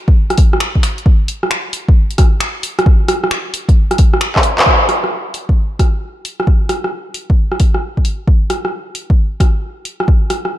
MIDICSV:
0, 0, Header, 1, 2, 480
1, 0, Start_track
1, 0, Tempo, 451128
1, 1126, Time_signature, 4, 2, 24, 8
1, 11259, End_track
2, 0, Start_track
2, 0, Title_t, "Drums"
2, 83, Note_on_c, 9, 36, 104
2, 190, Note_off_c, 9, 36, 0
2, 322, Note_on_c, 9, 37, 53
2, 322, Note_on_c, 9, 42, 30
2, 399, Note_on_c, 9, 46, 78
2, 404, Note_on_c, 9, 36, 105
2, 428, Note_off_c, 9, 37, 0
2, 428, Note_off_c, 9, 42, 0
2, 506, Note_off_c, 9, 46, 0
2, 510, Note_off_c, 9, 36, 0
2, 566, Note_on_c, 9, 37, 51
2, 642, Note_on_c, 9, 26, 102
2, 673, Note_off_c, 9, 37, 0
2, 749, Note_off_c, 9, 26, 0
2, 803, Note_on_c, 9, 36, 58
2, 885, Note_on_c, 9, 26, 60
2, 885, Note_on_c, 9, 46, 78
2, 910, Note_off_c, 9, 36, 0
2, 991, Note_off_c, 9, 26, 0
2, 991, Note_off_c, 9, 46, 0
2, 1044, Note_on_c, 9, 42, 31
2, 1126, Note_on_c, 9, 36, 115
2, 1150, Note_off_c, 9, 42, 0
2, 1232, Note_off_c, 9, 36, 0
2, 1365, Note_on_c, 9, 46, 82
2, 1471, Note_off_c, 9, 46, 0
2, 1522, Note_on_c, 9, 37, 55
2, 1604, Note_on_c, 9, 26, 98
2, 1629, Note_off_c, 9, 37, 0
2, 1710, Note_off_c, 9, 26, 0
2, 1841, Note_on_c, 9, 46, 76
2, 1948, Note_off_c, 9, 46, 0
2, 2006, Note_on_c, 9, 36, 102
2, 2112, Note_off_c, 9, 36, 0
2, 2240, Note_on_c, 9, 42, 31
2, 2321, Note_on_c, 9, 37, 55
2, 2321, Note_on_c, 9, 46, 82
2, 2327, Note_on_c, 9, 36, 107
2, 2347, Note_off_c, 9, 42, 0
2, 2428, Note_off_c, 9, 37, 0
2, 2428, Note_off_c, 9, 46, 0
2, 2434, Note_off_c, 9, 36, 0
2, 2559, Note_on_c, 9, 26, 103
2, 2665, Note_off_c, 9, 26, 0
2, 2801, Note_on_c, 9, 46, 81
2, 2908, Note_off_c, 9, 46, 0
2, 2965, Note_on_c, 9, 37, 69
2, 2965, Note_on_c, 9, 42, 31
2, 3045, Note_on_c, 9, 36, 120
2, 3072, Note_off_c, 9, 37, 0
2, 3072, Note_off_c, 9, 42, 0
2, 3151, Note_off_c, 9, 36, 0
2, 3282, Note_on_c, 9, 37, 65
2, 3282, Note_on_c, 9, 46, 78
2, 3388, Note_off_c, 9, 37, 0
2, 3388, Note_off_c, 9, 46, 0
2, 3444, Note_on_c, 9, 37, 59
2, 3522, Note_on_c, 9, 26, 98
2, 3550, Note_off_c, 9, 37, 0
2, 3629, Note_off_c, 9, 26, 0
2, 3763, Note_on_c, 9, 46, 77
2, 3870, Note_off_c, 9, 46, 0
2, 3922, Note_on_c, 9, 36, 102
2, 3925, Note_on_c, 9, 42, 31
2, 4029, Note_off_c, 9, 36, 0
2, 4031, Note_off_c, 9, 42, 0
2, 4160, Note_on_c, 9, 37, 58
2, 4160, Note_on_c, 9, 42, 33
2, 4238, Note_on_c, 9, 46, 77
2, 4243, Note_on_c, 9, 36, 105
2, 4266, Note_off_c, 9, 37, 0
2, 4266, Note_off_c, 9, 42, 0
2, 4345, Note_off_c, 9, 46, 0
2, 4349, Note_off_c, 9, 36, 0
2, 4400, Note_on_c, 9, 37, 54
2, 4479, Note_on_c, 9, 26, 105
2, 4506, Note_off_c, 9, 37, 0
2, 4585, Note_off_c, 9, 26, 0
2, 4635, Note_on_c, 9, 39, 77
2, 4641, Note_on_c, 9, 36, 58
2, 4715, Note_on_c, 9, 46, 78
2, 4742, Note_off_c, 9, 39, 0
2, 4747, Note_off_c, 9, 36, 0
2, 4821, Note_off_c, 9, 46, 0
2, 4880, Note_on_c, 9, 39, 104
2, 4880, Note_on_c, 9, 42, 32
2, 4962, Note_on_c, 9, 36, 106
2, 4986, Note_off_c, 9, 39, 0
2, 4986, Note_off_c, 9, 42, 0
2, 5068, Note_off_c, 9, 36, 0
2, 5201, Note_on_c, 9, 37, 55
2, 5201, Note_on_c, 9, 46, 63
2, 5307, Note_off_c, 9, 37, 0
2, 5307, Note_off_c, 9, 46, 0
2, 5360, Note_on_c, 9, 37, 49
2, 5467, Note_off_c, 9, 37, 0
2, 5682, Note_on_c, 9, 46, 64
2, 5788, Note_off_c, 9, 46, 0
2, 5842, Note_on_c, 9, 36, 94
2, 5948, Note_off_c, 9, 36, 0
2, 6165, Note_on_c, 9, 36, 94
2, 6166, Note_on_c, 9, 37, 47
2, 6166, Note_on_c, 9, 46, 64
2, 6271, Note_off_c, 9, 36, 0
2, 6272, Note_off_c, 9, 37, 0
2, 6272, Note_off_c, 9, 46, 0
2, 6649, Note_on_c, 9, 46, 66
2, 6756, Note_off_c, 9, 46, 0
2, 6806, Note_on_c, 9, 37, 60
2, 6886, Note_on_c, 9, 36, 110
2, 6913, Note_off_c, 9, 37, 0
2, 6992, Note_off_c, 9, 36, 0
2, 7121, Note_on_c, 9, 37, 55
2, 7121, Note_on_c, 9, 46, 63
2, 7227, Note_off_c, 9, 37, 0
2, 7227, Note_off_c, 9, 46, 0
2, 7281, Note_on_c, 9, 37, 48
2, 7387, Note_off_c, 9, 37, 0
2, 7600, Note_on_c, 9, 46, 61
2, 7707, Note_off_c, 9, 46, 0
2, 7765, Note_on_c, 9, 36, 94
2, 7871, Note_off_c, 9, 36, 0
2, 7997, Note_on_c, 9, 37, 47
2, 8082, Note_on_c, 9, 46, 63
2, 8086, Note_on_c, 9, 36, 97
2, 8103, Note_off_c, 9, 37, 0
2, 8188, Note_off_c, 9, 46, 0
2, 8192, Note_off_c, 9, 36, 0
2, 8240, Note_on_c, 9, 37, 45
2, 8347, Note_off_c, 9, 37, 0
2, 8484, Note_on_c, 9, 36, 53
2, 8563, Note_on_c, 9, 46, 64
2, 8590, Note_off_c, 9, 36, 0
2, 8670, Note_off_c, 9, 46, 0
2, 8805, Note_on_c, 9, 36, 108
2, 8911, Note_off_c, 9, 36, 0
2, 9044, Note_on_c, 9, 37, 51
2, 9044, Note_on_c, 9, 46, 61
2, 9150, Note_off_c, 9, 37, 0
2, 9150, Note_off_c, 9, 46, 0
2, 9201, Note_on_c, 9, 37, 47
2, 9308, Note_off_c, 9, 37, 0
2, 9522, Note_on_c, 9, 46, 61
2, 9629, Note_off_c, 9, 46, 0
2, 9682, Note_on_c, 9, 36, 98
2, 9789, Note_off_c, 9, 36, 0
2, 10003, Note_on_c, 9, 36, 103
2, 10006, Note_on_c, 9, 37, 46
2, 10006, Note_on_c, 9, 46, 60
2, 10109, Note_off_c, 9, 36, 0
2, 10112, Note_off_c, 9, 37, 0
2, 10112, Note_off_c, 9, 46, 0
2, 10483, Note_on_c, 9, 46, 62
2, 10589, Note_off_c, 9, 46, 0
2, 10641, Note_on_c, 9, 37, 57
2, 10725, Note_on_c, 9, 36, 113
2, 10748, Note_off_c, 9, 37, 0
2, 10831, Note_off_c, 9, 36, 0
2, 10960, Note_on_c, 9, 37, 50
2, 10960, Note_on_c, 9, 46, 63
2, 11066, Note_off_c, 9, 37, 0
2, 11066, Note_off_c, 9, 46, 0
2, 11120, Note_on_c, 9, 37, 45
2, 11226, Note_off_c, 9, 37, 0
2, 11259, End_track
0, 0, End_of_file